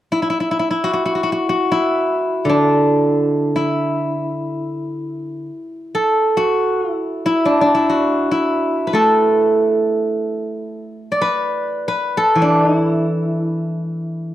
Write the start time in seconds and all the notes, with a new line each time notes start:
0.12 E4
0.22 E4
0.30 E4
0.40 E4
0.51 E4
0.59 E4
0.71 E4
0.84 F#4
0.93 F#4
1.05 F#4
1.15 F#4
1.23 F#4
1.32 F#4
1.49 F#4
1.72 E4
2.45 D3
2.49 D4
3.56 E4
5.95 A4
6.37 F#4
6.82 F4
6.93 E4
7.26 E4
7.45 D4
7.61 D4
7.75 E4
7.90 F#4
8.31 E4
8.87 B4
8.93 A3 A4
11.12 D5
11.21 B4
11.88 B4
12.17 A4
12.35 E3
12.42 D4
12.65 D#4
12.79 E4